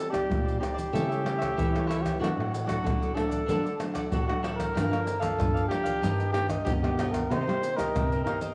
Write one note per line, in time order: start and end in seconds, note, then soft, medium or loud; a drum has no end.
0.00 0.22 G3 medium
0.00 0.26 C4 medium
0.00 0.10 A4 medium
0.10 0.56 D#4 medium
0.10 0.57 G4 medium
0.10 0.43 G4 soft
0.10 0.56 G4 medium
0.10 0.43 C5 medium
0.10 0.42 D5 medium
0.10 0.56 D5 medium
0.10 pandeiro medium
0.10 tamborim medium
0.10 maracas medium
0.10 surdo soft
0.29 0.57 A#2 medium
0.29 0.90 G3 medium
0.29 pandeiro medium
0.29 tamborim medium
0.29 maracas medium
0.29 surdo loud
0.45 0.59 G4 soft
0.45 0.59 C5 soft
0.45 0.60 D5 soft
0.45 pandeiro soft
0.45 maracas soft
0.60 0.75 D#4 soft
0.60 0.90 D#4 medium
0.60 0.75 G4 medium
0.60 1.89 G4 medium
0.60 0.91 G4 medium
0.60 0.74 C5 medium
0.60 0.91 D5 medium
0.60 0.73 D5 medium
0.60 pandeiro medium
0.60 tamborim medium
0.60 maracas medium
0.60 surdo soft
0.74 0.91 G4 medium
0.74 0.91 C5 medium
0.74 0.90 D5 medium
0.79 pandeiro medium
0.79 maracas medium
0.79 surdo soft
0.93 1.47 C#3 loud
0.93 1.54 C#3 medium
0.93 1.12 G3 medium
0.93 1.12 A3 medium
0.93 1.13 E4 medium
0.93 1.08 G4 medium
0.93 1.08 A4 medium
0.93 1.08 C#5 medium
0.93 1.07 E5 medium
0.93 pandeiro medium
0.93 maracas medium
0.93 surdo medium
1.09 1.23 A4 soft
1.09 1.24 C#5 soft
1.09 1.24 E5 medium
1.09 pandeiro soft
1.09 maracas soft
1.24 1.67 G3 medium
1.24 1.68 A3 medium
1.24 1.68 E4 medium
1.24 muted cavaquinho stroke soft
1.24 pandeiro medium
1.24 tamborim medium
1.38 1.55 A4 medium
1.38 1.54 C#5 medium
1.38 1.54 E5 medium
1.38 pandeiro medium
1.38 tamborim medium
1.38 maracas medium
1.38 surdo soft
1.57 2.18 C#3 medium
1.57 2.12 E3 medium
1.57 1.71 G4 medium
1.57 1.72 A4 medium
1.57 1.72 C#5 medium
1.57 1.71 E5 medium
1.57 pandeiro medium
1.57 maracas medium
1.57 surdo medium
1.72 2.16 G3 medium
1.72 2.16 A3 medium
1.72 2.17 E4 medium
1.72 1.86 A4 soft
1.72 1.87 C#5 soft
1.72 1.87 E5 soft
1.72 pandeiro soft
1.72 tamborim medium
1.72 maracas soft
1.87 2.03 E4 medium
1.87 2.18 G4 medium
1.87 2.18 A4 medium
1.87 2.19 C#5 medium
1.87 2.20 E5 medium
1.87 pandeiro medium
1.87 tamborim medium
1.87 maracas medium
2.02 2.19 G4 medium
2.02 pandeiro medium
2.02 tamborim medium
2.02 maracas medium
2.02 surdo soft
2.19 2.81 D3 medium
2.19 2.34 D3 loud
2.19 2.51 F#3 soft
2.19 2.51 A3 medium
2.19 2.35 D4 medium
2.19 2.51 D4 medium
2.19 2.65 F#4 medium
2.19 2.35 A4 medium
2.19 2.35 D5 medium
2.19 2.35 F#5 medium
2.24 pandeiro medium
2.24 tamborim medium
2.24 maracas medium
2.24 surdo medium
2.36 2.78 A2 medium
2.36 2.50 A4 soft
2.36 2.50 D5 soft
2.36 2.51 F#5 soft
2.40 pandeiro soft
2.40 tamborim medium
2.40 maracas soft
2.51 muted cavaquinho stroke soft
2.51 pandeiro medium
2.51 maracas medium
2.64 3.10 F#3 medium
2.64 3.11 A3 medium
2.64 3.11 D4 medium
2.64 3.16 F#4 medium
2.64 2.98 A4 medium
2.64 2.98 D5 medium
2.64 2.97 F#5 medium
2.69 pandeiro medium
2.69 tamborim medium
2.69 maracas medium
2.69 surdo soft
2.84 3.45 A2 medium
2.84 3.11 D3 medium
2.84 pandeiro medium
2.84 tamborim medium
2.84 maracas medium
2.84 surdo loud
3.00 3.13 A4 soft
3.00 3.14 D5 soft
3.00 3.15 F#5 medium
3.00 pandeiro soft
3.00 maracas soft
3.14 3.42 F#3 medium
3.14 3.43 A3 medium
3.14 3.30 D4 soft
3.14 3.43 D4 medium
3.14 3.84 A4 medium
3.14 3.29 A4 medium
3.14 3.28 D5 medium
3.14 3.28 F#5 medium
3.14 pandeiro medium
3.14 tamborim medium
3.14 surdo soft
3.29 3.46 A4 medium
3.29 3.46 D5 medium
3.29 3.45 F#5 medium
3.29 pandeiro medium
3.29 maracas medium
3.29 surdo soft
3.46 4.03 D3 medium
3.46 4.09 D3 medium
3.46 3.67 F#3 medium
3.46 3.67 A3 medium
3.46 3.62 D4 medium
3.46 3.68 D4 medium
3.46 3.63 A4 medium
3.46 3.63 D5 medium
3.46 3.62 F#5 medium
3.46 pandeiro medium
3.46 maracas medium
3.46 surdo medium
3.64 3.79 A4 soft
3.64 3.79 D5 soft
3.64 3.79 F#5 soft
3.64 pandeiro soft
3.64 maracas soft
3.79 4.23 F#3 medium
3.79 4.23 A3 medium
3.79 4.24 D4 medium
3.79 muted cavaquinho stroke soft
3.79 pandeiro medium
3.79 tamborim medium
3.79 maracas medium
3.94 4.11 A4 medium
3.94 4.10 D5 medium
3.94 4.10 F#5 medium
3.94 pandeiro medium
3.94 tamborim medium
3.94 maracas medium
3.94 surdo soft
4.11 4.66 A2 medium
4.11 4.74 A2 medium
4.11 4.27 D4 medium
4.11 4.27 F#4 medium
4.11 4.27 A4 soft
4.11 4.27 D5 medium
4.11 4.27 F#5 medium
4.11 pandeiro medium
4.11 maracas medium
4.11 surdo loud
4.28 4.71 F#3 medium
4.28 4.72 A3 medium
4.28 4.72 D4 medium
4.28 4.42 F#4 medium
4.28 4.42 A4 soft
4.28 4.43 D5 soft
4.28 4.43 F#5 soft
4.28 pandeiro soft
4.28 tamborim medium
4.28 maracas soft
4.43 4.74 D4 medium
4.43 4.74 A4 medium
4.43 4.75 D5 medium
4.43 4.75 F#5 medium
4.43 pandeiro medium
4.43 tamborim medium
4.56 5.22 A#4 medium
4.60 pandeiro medium
4.60 tamborim medium
4.60 maracas medium
4.60 surdo soft
4.74 4.89 G2 medium
4.74 5.37 G2 medium
4.74 5.07 F3 medium
4.74 5.07 A#3 medium
4.74 4.90 G4 medium
4.74 4.91 A#4 medium
4.74 4.91 D5 medium
4.74 4.90 F5 medium
4.74 pandeiro medium
4.74 tamborim medium
4.74 maracas medium
4.74 surdo medium
4.79 5.07 D4 medium
4.91 5.33 D3 medium
4.91 5.05 A#4 soft
4.91 5.05 D5 soft
4.91 5.06 F5 soft
4.91 pandeiro soft
4.91 tamborim medium
4.91 maracas soft
5.06 muted cavaquinho stroke soft
5.06 pandeiro medium
5.06 maracas medium
5.20 5.66 F3 medium
5.20 5.66 A#3 medium
5.20 5.66 D4 medium
5.20 5.68 A4 medium
5.20 5.53 D5 medium
5.20 5.53 F5 medium
5.20 pandeiro medium
5.20 tamborim medium
5.20 maracas medium
5.20 surdo soft
5.39 5.66 G2 medium
5.39 6.00 D3 medium
5.39 pandeiro medium
5.39 tamborim medium
5.39 maracas medium
5.39 surdo loud
5.54 5.69 A#4 soft
5.54 5.70 D5 soft
5.54 5.70 F5 soft
5.54 pandeiro soft
5.54 maracas soft
5.68 6.00 F3 medium
5.68 6.01 A#3 soft
5.68 6.01 D4 medium
5.68 6.30 G4 loud
5.68 5.85 G4 soft
5.68 5.84 A#4 soft
5.68 5.84 D5 medium
5.68 5.82 F5 soft
5.68 pandeiro medium
5.68 tamborim medium
5.68 surdo soft
5.83 6.01 A#4 medium
5.83 6.01 D5 medium
5.83 6.00 F5 medium
5.83 pandeiro medium
5.83 maracas medium
5.83 surdo soft
6.02 6.57 G2 loud
6.02 6.64 G2 medium
6.02 6.22 D#3 medium
6.02 6.23 A#3 medium
6.02 6.23 D#4 medium
6.02 6.18 G4 medium
6.02 6.18 A#4 medium
6.02 6.18 D#5 medium
6.02 6.17 G5 medium
6.02 pandeiro medium
6.02 maracas medium
6.02 surdo medium
6.18 6.32 A#4 soft
6.18 6.33 D#5 soft
6.18 6.33 G5 soft
6.18 pandeiro soft
6.18 maracas soft
6.33 6.54 D#3 medium
6.33 6.54 A#3 medium
6.33 6.54 D#4 medium
6.33 6.48 G4 loud
6.33 muted cavaquinho stroke soft
6.33 pandeiro medium
6.33 tamborim medium
6.48 6.66 A#4 medium
6.48 6.65 D#5 medium
6.48 6.65 G5 medium
6.48 pandeiro medium
6.48 tamborim medium
6.48 maracas medium
6.48 surdo soft
6.65 7.28 G2 medium
6.65 7.21 B2 medium
6.65 6.77 D#3 medium
6.65 6.77 A#3 medium
6.65 6.77 D#4 medium
6.65 6.73 G4 medium
6.65 6.82 G4 medium
6.65 6.82 A#4 soft
6.65 6.82 D#5 medium
6.65 6.82 G5 medium
6.65 pandeiro medium
6.65 maracas medium
6.65 surdo loud
6.82 7.26 D#3 medium
6.82 7.26 A#3 medium
6.82 7.26 D#4 medium
6.82 7.13 G4 medium
6.82 6.98 A#4 soft
6.82 6.99 D#5 soft
6.82 6.98 G5 soft
6.82 pandeiro soft
6.82 tamborim medium
6.82 maracas soft
6.98 7.29 G4 medium
6.98 7.30 A#4 medium
6.98 7.30 D#5 medium
6.98 7.31 G5 medium
6.98 pandeiro medium
6.98 tamborim medium
6.98 maracas medium
7.11 7.32 A#4 medium
7.11 pandeiro medium
7.11 tamborim medium
7.11 maracas medium
7.11 surdo soft
7.30 7.44 C3 loud
7.30 7.91 C3 medium
7.30 7.41 A#3 soft
7.30 7.46 D#4 medium
7.30 7.41 D#4 medium
7.30 7.41 G4 medium
7.30 7.46 A#4 medium
7.30 7.78 C5 loud
7.30 7.46 C5 medium
7.30 7.46 D#5 medium
7.30 pandeiro medium
7.30 tamborim medium
7.30 maracas medium
7.30 surdo medium
7.47 7.88 G3 medium
7.47 7.74 A#3 medium
7.47 7.74 D#4 medium
7.47 7.74 G4 medium
7.47 7.61 A#4 soft
7.47 7.61 C5 soft
7.47 7.62 D#5 soft
7.47 pandeiro soft
7.47 tamborim medium
7.47 maracas soft
7.61 muted cavaquinho stroke soft
7.61 pandeiro medium
7.61 maracas medium
7.76 8.21 A#3 medium
7.76 8.21 D#4 medium
7.76 8.21 G4 medium
7.76 8.23 A#4 loud
7.76 8.10 A#4 medium
7.76 8.09 C5 medium
7.76 8.08 D#5 medium
7.76 pandeiro medium
7.76 tamborim medium
7.76 maracas medium
7.76 surdo soft
7.95 8.54 G2 medium
7.95 8.22 C3 medium
7.95 pandeiro medium
7.95 tamborim medium
7.95 maracas medium
7.95 surdo medium
8.11 8.25 A#4 soft
8.11 8.26 C5 soft
8.11 8.26 D#5 soft
8.11 pandeiro soft
8.11 maracas soft
8.24 8.46 A#3 soft
8.24 8.47 D#4 medium
8.24 8.41 D#4 soft
8.24 8.47 G4 medium
8.24 8.39 A#4 medium
8.24 8.41 A#4 soft
8.24 8.41 C5 medium
8.24 8.40 D#5 soft
8.24 pandeiro medium
8.24 tamborim medium
8.24 surdo soft
8.41 8.54 A#4 medium
8.41 8.54 C5 medium
8.41 8.54 D#5 medium
8.41 pandeiro medium
8.41 maracas medium
8.41 surdo soft